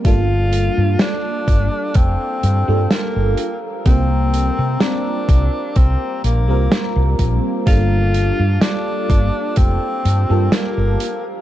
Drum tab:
HH |xxxxxxxx|xxxxxxxx|xxxxxxxx|
SD |--o---o-|--o---o-|--o---o-|
BD |o--oo---|o--oo--o|o--oo---|